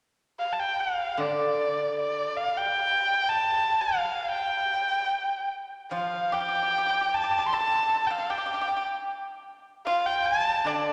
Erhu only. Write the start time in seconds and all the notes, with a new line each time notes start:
0.39 F5
0.53 A5
0.60 G5
0.80 F5
1.20 D5
1.99 D5
2.37 F5
2.57 G5
3.29 A5
3.82 F5
4.32 G5
5.92 F5
6.34 G5
7.15 A5
7.48 C6
7.54 A5
8.07 G5
8.11 F5
8.31 G5
9.87 F5
10.06 G5
10.26 A5
10.67 D5